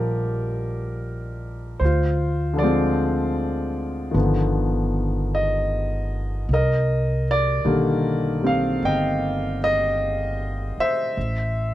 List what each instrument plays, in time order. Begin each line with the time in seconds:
Already playing: upright bass A#1, grand piano D3 F3 G3 A#3 G4 A#4 D5
1.79 upright bass D2, grand piano C5
1.85 grand piano F4
2.53 grand piano D3 F3
2.59 grand piano G#3 D5
2.63 grand piano C4 F4
4.11 upright bass G1, grand piano D#3 F3 B3
4.16 grand piano D3
5.35 grand piano D#5
6.49 upright bass C2
6.53 grand piano A#4 D#5
7.31 grand piano D5
7.65 upright bass B1, grand piano D3 D#3 G3 A#3
8.41 grand piano G3 C4
8.47 grand piano F5
8.83 upright bass G1, grand piano D#5 G5
9.64 grand piano D#5
10.78 grand piano C5 E5, muted upright bass stroke
11.17 upright bass A1